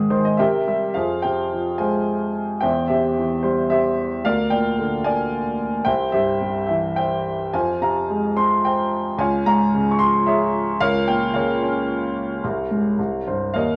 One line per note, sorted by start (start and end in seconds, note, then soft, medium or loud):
0.00 0.41 G#2 medium
0.00 0.10 D#3 medium
0.00 0.35 C4 medium
0.00 0.34 G#4 medium
0.10 0.38 D#3 medium
0.10 0.23 C5 medium
0.25 0.38 D#5 medium
0.37 0.94 C3 medium
0.37 0.92 G4 medium
0.37 0.92 A#4 medium
0.37 0.66 E5 medium
0.37 0.66 G5 medium
0.68 0.95 G3 medium
0.68 0.94 E5 medium
0.94 2.58 F2 medium
0.94 1.76 G#4 medium
0.94 1.22 C5 soft
0.94 1.21 F5 medium
1.22 2.32 C3 soft
1.22 1.79 C5 soft
1.22 1.75 G5 medium
1.53 2.59 F3 soft
1.78 2.60 G#3 soft
1.78 2.58 C5 medium
1.78 2.58 F5 medium
1.78 2.64 G#5 medium
2.61 4.20 E2 medium
2.61 2.88 C5 medium
2.61 2.86 E5 medium
2.61 2.89 G5 medium
2.88 3.94 C3 soft
2.88 3.66 G4 soft
2.88 3.41 C5 soft
2.88 3.44 E5 medium
3.17 4.21 E3 soft
3.43 4.22 G3 soft
3.43 3.70 C5 medium
3.70 4.21 G4 medium
3.70 4.21 C5 medium
3.70 4.25 E5 medium
4.24 5.82 D2 medium
4.24 4.50 A#4 medium
4.24 4.50 D5 medium
4.24 4.52 F5 medium
4.50 5.55 A#2 soft
4.50 5.28 A#4 medium
4.50 5.04 D5 soft
4.50 5.06 G5 medium
4.79 5.83 D3 soft
5.04 5.83 A#3 soft
5.04 5.82 D5 medium
5.04 5.88 G#5 medium
5.85 7.49 C2 medium
5.85 6.12 C5 medium
5.85 6.11 E5 medium
5.85 6.13 G5 medium
6.12 7.22 G2 soft
6.12 6.93 G4 medium
6.12 6.93 C5 medium
6.12 6.65 E5 medium
6.41 7.50 C3 soft
6.67 7.51 E3 soft
6.67 6.96 E5 medium
6.96 7.50 C5 soft
6.96 7.50 E5 medium
6.96 7.49 G5 medium
7.54 9.15 F2 medium
7.54 8.34 C5 medium
7.54 7.81 F5 medium
7.54 7.82 G#5 medium
7.82 8.88 C3 soft
7.82 8.61 F5 soft
7.82 8.39 A#5 medium
8.10 9.16 G#3 soft
8.37 9.16 C4 medium
8.37 8.62 C6 medium
8.65 9.16 C5 soft
8.65 9.21 G5 medium
9.18 10.76 C#2 medium
9.18 9.46 C#5 medium
9.18 9.46 F5 medium
9.18 9.46 G#5 medium
9.46 10.50 G#2 soft
9.46 10.23 C#5 medium
9.46 10.23 F5 medium
9.46 9.90 A#5 medium
9.74 10.78 C#3 medium
9.91 9.99 C#6 medium
9.99 10.78 F3 medium
9.99 10.27 C6 medium
10.26 10.77 G#4 medium
10.26 10.77 C#5 medium
10.26 10.77 E5 medium
10.80 12.39 C#2 medium
10.80 11.34 A#4 medium
10.80 11.34 C#5 medium
10.80 11.08 F5 loud
11.08 12.13 A#2 soft
11.08 11.35 G5 medium
11.34 12.40 C#3 medium
11.34 13.52 A#4 medium
11.34 13.52 C#5 medium
11.34 13.51 F5 medium
11.63 12.41 C#4 medium
12.44 12.97 C2 medium
12.71 12.98 G#2 soft
12.99 13.54 C2 medium
13.27 13.55 G2 soft
13.27 13.54 C5 medium
13.54 13.76 D#2 medium
13.54 13.76 A#4 medium
13.54 13.76 C#5 medium
13.54 13.76 D#5 medium
13.54 13.76 F5 medium